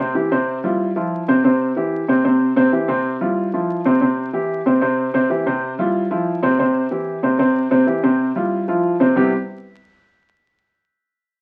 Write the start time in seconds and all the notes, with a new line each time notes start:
0.00 C3 C4 C5
0.15 E3 E4 G4
0.31 C3 C4 C5
0.64 G3 E4 F4
0.96 F3 E4 F4
1.28 C3 C4 C5
1.44 C3 C4 C5
1.76 E3 E4 G4
2.08 C3 C4 C5
2.24 C3 C4 C5
2.56 C3 C4 C5
2.73 E3 E4 G4
2.88 C3 C4 C5
3.21 G3 E4 F4
3.54 F3 E4 F4
3.85 C3 C4 C5
4.01 C3 C4 C5
4.33 E3 E4 G4
4.66 C3 C4 C5
4.81 C3 C4 C5
5.14 C3 C4 C5
5.30 E3 E4 G4
5.46 C3 C4 C5
5.79 G3 E4 F4
6.11 F3 E4 F4
6.43 C3 C4 C5
6.59 C3 C4 C5
6.91 E3 E4 G4
7.23 C3 C4 C5
7.39 C3 C4 C5
7.71 C3 C4 C5
7.87 E3 E4 G4
8.03 C3 C4 C5
8.36 G3 E4 F4
8.68 F3 E4 F4
9.00 C3 C4 C5
9.16 C3 G3 B3 C4 E4 G4